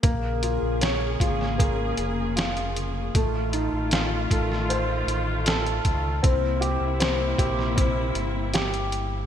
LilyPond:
<<
  \new Staff \with { instrumentName = "Grand piano" } { \time 4/4 \key f \phrygian \tempo 4 = 78 bes8 f'8 des''8 f'8 bes4 f'4 | a8 ees'8 f'8 a'8 c''4 a'4 | c'8 g'8 c'8 g'8 c'4 g'4 | }
  \new Staff \with { instrumentName = "String section" } { \time 4/4 \key f \phrygian <des bes aes'>1 | <ees a f'>1 | <c bes e'>1 | }
  \new Staff \with { instrumentName = "Sub bass" } { \clef bass \time 4/4 \key f \phrygian bes,,8. bes,,8. aes,,4 f,,4. | a,,8. a,,8. a,,4 a,,4 des,8 | c,8. c,8. bes,,4 g,,4. | }
  \new DrumStaff \with { instrumentName = "Drums" } \drummode { \time 4/4 <hh bd>8 hh8 <hh sn>8 <hh bd>16 sn16 <hh bd>8 hh8 <hh sn>16 hh16 hh8 | <hh bd>8 hh8 <hh sn>8 <hh bd>16 sn16 hh8 hh8 <hh sn>16 hh16 <hh bd>8 | <hh bd>8 hh8 <hh sn>8 <hh bd>16 sn16 <hh bd>8 hh8 <hh sn>16 hh16 hh8 | }
>>